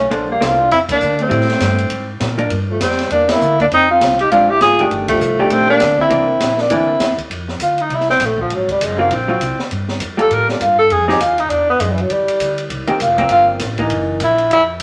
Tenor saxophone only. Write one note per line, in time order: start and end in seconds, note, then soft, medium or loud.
0.31 0.46 A#3 medium
0.44 0.71 F4 medium
0.72 0.80 E4 medium
0.92 1.24 D4 medium
1.22 2.10 C4 medium
2.71 2.81 A3 medium
2.82 3.09 C4 medium
3.12 3.31 D4 medium
3.30 3.59 E4 medium
3.61 3.66 D4 medium
3.74 3.89 D#4 loud
3.91 4.18 F4 medium
4.20 4.31 G4 medium
4.31 4.51 F4 loud
4.50 4.61 G4 loud
4.62 4.83 G#4 loud
5.09 5.54 A3 medium
5.52 5.69 C4 medium
5.70 5.97 D4 loud
6.01 6.62 E4 medium
6.61 6.74 D4 medium
6.72 7.19 E4 medium
7.63 7.83 F4 medium
7.81 7.96 D#4 medium
7.94 8.09 E4 medium
8.10 8.27 C4 medium
8.25 8.40 A3 medium
8.41 8.55 F3 medium
8.54 8.70 F#3 medium
8.71 8.84 G3 medium
8.83 8.99 G#3 medium
9.00 9.15 A#3 medium
9.14 9.72 C4 medium
10.21 10.35 A4 medium
10.33 10.49 A#4 loud
10.50 10.62 D4 medium
10.61 10.78 F4 medium
10.79 10.93 A4 loud
10.92 11.08 G#4 medium
11.09 11.22 G4 medium
11.21 11.41 F4 medium
11.40 11.52 D#4 medium
11.50 11.68 D4 medium
11.70 11.82 B3 medium
11.80 11.94 G#3 medium
11.92 12.03 E3 medium
12.01 12.13 F#3 medium
12.12 12.71 G3 medium
13.02 13.29 F4 medium
13.31 13.47 F4 loud
14.24 14.50 E4 medium
14.53 14.63 E4 loud